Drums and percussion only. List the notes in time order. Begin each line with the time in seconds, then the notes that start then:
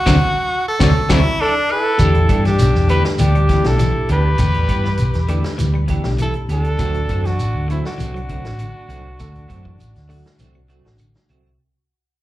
0.07 kick, snare, claves, shekere
0.80 kick, snare, claves, shekere
1.10 kick, snare, claves, shekere
1.99 kick, closed hi-hat, claves, shekere
2.14 closed hi-hat
2.29 kick, closed hi-hat, claves, shekere
2.45 snare, closed hi-hat
2.59 snare, closed hi-hat, shekere
2.75 snare
2.89 closed hi-hat, claves, shekere
3.05 snare
3.19 closed hi-hat, shekere
3.35 closed hi-hat, claves
3.49 kick, snare, closed hi-hat, shekere
3.64 snare, closed hi-hat
3.79 snare, closed hi-hat, claves, shekere
4.09 closed hi-hat, shekere
4.38 kick, closed hi-hat, claves, shekere
4.54 closed hi-hat
4.69 kick, closed hi-hat, claves, shekere
4.85 snare
4.97 closed hi-hat, shekere
5.13 snare, closed hi-hat
5.28 closed hi-hat, claves, shekere
5.44 snare, closed hi-hat
5.58 snare, closed hi-hat, shekere
5.75 claves
5.88 kick, closed hi-hat, shekere
6.04 snare
6.18 closed hi-hat, claves, shekere
6.34 closed hi-hat
6.49 closed hi-hat, shekere
6.64 closed hi-hat
6.79 kick, closed hi-hat, claves, shekere
6.94 closed hi-hat
7.09 kick, closed hi-hat, claves, shekere
7.25 snare, closed hi-hat
7.39 closed hi-hat, shekere
7.70 closed hi-hat, claves, shekere
7.85 snare
8.00 closed hi-hat, shekere
8.16 closed hi-hat, claves
8.29 kick, closed hi-hat, shekere
8.44 snare, closed hi-hat
8.59 closed hi-hat, claves, shekere
8.89 closed hi-hat, shekere
9.19 kick, closed hi-hat, claves, shekere
9.35 closed hi-hat
9.50 kick, closed hi-hat, claves, shekere
9.65 kick
9.80 closed hi-hat, shekere
9.96 snare, closed hi-hat
10.09 open hi-hat, claves, shekere
10.26 snare, closed hi-hat
10.39 closed hi-hat, shekere
10.55 claves
10.70 closed hi-hat, shekere
10.86 snare
10.98 closed hi-hat, claves, shekere
11.15 snare, closed hi-hat
11.29 closed hi-hat, shekere
11.46 closed hi-hat